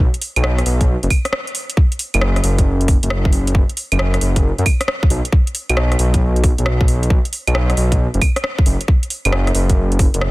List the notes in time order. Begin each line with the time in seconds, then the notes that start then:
0.14 closed hi-hat
0.22 open hi-hat
0.36 B1, closed hi-hat, claves
0.44 cross-stick
0.58 cross-stick, closed hi-hat
0.66 B1, open hi-hat
0.81 kick, closed hi-hat
1.03 F#1, closed hi-hat
1.10 kick, open hi-hat, claves
1.25 cross-stick, closed hi-hat
1.33 cross-stick
1.47 closed hi-hat
1.55 open hi-hat
1.70 closed hi-hat
1.77 kick
1.92 closed hi-hat
1.99 open hi-hat
2.14 F#1, closed hi-hat, claves
2.21 cross-stick
2.36 cross-stick, closed hi-hat
2.44 F#1, open hi-hat
2.58 kick, closed hi-hat
2.81 closed hi-hat
2.88 kick, open hi-hat
3.03 F#1, closed hi-hat
3.10 cross-stick
3.25 kick
3.33 open hi-hat
3.47 closed hi-hat
3.55 kick
3.69 closed hi-hat
3.77 open hi-hat
3.92 F#1, closed hi-hat, claves
3.99 cross-stick
4.14 cross-stick, closed hi-hat
4.21 F#1, open hi-hat
4.36 kick, closed hi-hat
4.58 F#2, closed hi-hat
4.66 kick, open hi-hat, claves
4.81 cross-stick, closed hi-hat
4.88 cross-stick
5.03 kick
5.10 B1, open hi-hat
5.25 closed hi-hat
5.33 kick
5.47 closed hi-hat
5.55 open hi-hat
5.69 B1, closed hi-hat, claves
5.77 cross-stick
5.92 cross-stick, closed hi-hat
5.99 B1, open hi-hat
6.14 kick, closed hi-hat
6.36 closed hi-hat
6.44 kick, open hi-hat
6.58 B1, closed hi-hat
6.66 cross-stick
6.81 kick
6.88 open hi-hat
7.03 closed hi-hat
7.10 kick
7.25 closed hi-hat
7.33 open hi-hat
7.47 B1, closed hi-hat, claves
7.55 cross-stick
7.70 cross-stick, closed hi-hat
7.77 B1, open hi-hat
7.92 kick, closed hi-hat
8.14 F#1, closed hi-hat
8.21 kick, open hi-hat, claves
8.36 cross-stick, closed hi-hat
8.44 cross-stick
8.59 kick
8.66 F#1, open hi-hat
8.81 closed hi-hat
8.88 kick
9.03 closed hi-hat
9.10 open hi-hat
9.25 F#1, closed hi-hat, claves
9.32 cross-stick
9.47 cross-stick, closed hi-hat
9.55 F#1, open hi-hat
9.70 kick, closed hi-hat
9.92 closed hi-hat
9.99 kick, open hi-hat
10.14 F#1, closed hi-hat
10.21 cross-stick